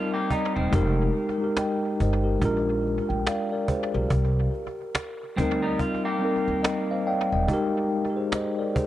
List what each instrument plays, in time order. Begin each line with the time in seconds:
Already playing: tine electric piano G3 C4 D#4 A#4, clean electric guitar F4
0.13 clean electric guitar A#3 G4, cajon slap
0.30 clean electric guitar G3 D#4, cajon bass
0.54 upright bass E1, clean electric guitar D#3 C4, cajon slap
0.70 upright bass F1, tine electric piano G#3 D#4 G4, cajon bass
0.75 tine electric piano A#4
1.17 cajon slap
1.38 tine electric piano G#3 D#4 G4, cajon slap
1.44 tine electric piano A#4
1.57 tine electric piano D#5 G5, cajon slap
2.00 upright bass G1, tine electric piano C5 D#5, cajon bass
2.24 tine electric piano G4 A#4, cajon slap
2.39 upright bass A#1, tine electric piano G#3 D4 F4, cajon bass
2.45 tine electric piano A#4
2.69 cajon slap
2.87 cajon slap
3.09 upright bass A#1, tine electric piano G5, cajon slap
3.27 tine electric piano D5 F5, cajon slap
3.52 tine electric piano A#4 D5
3.68 tine electric piano G#4 C5, cajon bass
3.92 upright bass B1, tine electric piano G4 A#4, cajon slap
4.10 upright bass C2, cajon bass
4.54 cajon slap
4.78 cajon slap
4.95 cajon slap
5.36 upright bass D2, clean electric guitar D#3 C4, tine electric piano G3 C4 D#4, cajon bass
5.42 tine electric piano A#4
5.62 clean electric guitar G3 D#4, cajon slap
5.79 clean electric guitar F4, cajon bass
6.05 clean electric guitar A#3 G4, cajon slap
6.19 tine electric piano G3 C4 D#4
6.25 tine electric piano A#4, cajon slap
6.48 upright bass D#2, cajon slap
6.63 tine electric piano D#5, cajon slap
6.91 tine electric piano C5 D#5 F5
7.07 tine electric piano D5 F5 G5, cajon slap
7.30 upright bass E1, tine electric piano D#5 G5, cajon slap
7.48 tine electric piano G#3 D#4 G4, cajon bass
7.53 tine electric piano A#4
7.92 cajon slap
8.16 tine electric piano G#4 C5, cajon slap
8.32 tine electric piano C5 D#5, cajon slap
8.59 tine electric piano A#4 D5
8.75 tine electric piano G#4 C5, cajon bass